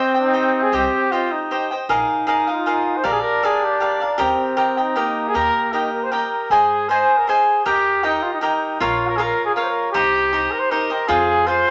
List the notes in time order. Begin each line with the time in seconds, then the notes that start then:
Already playing: C4 G4 C5 D#5 G5
0.14 D#4 C5 D#5 G5
0.33 G4 C5 D#5 G5
0.62 G#4
0.72 C2 G4 C5 D#5 G5
1.11 F4 G4 C5 D#5 G5
1.31 D#4
1.51 G4 C5 D#5 G5
1.71 C5 D#5 G5
1.89 A#1 D#4 G#4 A#4 D#5 F5
2.27 G#4 A#4 D#5 F5
2.47 F4 A#4 D#5 F5
2.66 G#4 A#4 D#5 F5
2.97 C5
3.04 A#1 D4 G4 A#4 D5 F5
3.12 G#4
3.20 A#4
3.43 G4 G#4 A#4 D5 F5
3.64 G4
3.80 G4 A#4 D5 F5
4.00 A#4 D5 F5
4.18 D#2 C4 G4 A#4 D#5 G5
4.57 G4 A#4 D#5 G5
4.77 D#4 A#4 D#5 G5
4.96 A#3 G4 A#4 D#5 G5
5.28 G#4
5.34 D#2 G4 A#4 D#5 G5
5.73 D#4 G4 A#4 D#5 G5
5.93 A#4
6.03 C5
6.11 G4 A#4 D#5 G5
6.50 G#1 G#4 C5 D#5 G#5
6.89 G#4 C5 D#5 G#5
7.17 A#4
7.27 G#4 C5 D#5 G#5
7.65 D#2 G4 A#4 D#5 G5
8.03 D#4 G4 A#4 D#5 G5
8.22 F4
8.34 D#4
8.40 D#4 G4 A#4 D#5 G5
8.80 A#1 F4 A#4 C#5 F5
9.08 A#4
9.16 F4 G#4 A#4 C#5 F5
9.22 A#4
9.45 G#4
9.55 F4 A#4 C#5 F5
9.62 C5
9.69 A#4
9.92 C2 D#4 G4 C5 D#5
10.33 D#4 G4 C5 D#5
10.51 A#4
10.59 C5
10.71 D#4 G4 A#4 C5 D#5
10.90 G4 C5 D#5
11.08 F2 F4 G#4 C5 F5
11.47 F4 G#4 C5 F5
11.67 C5 F5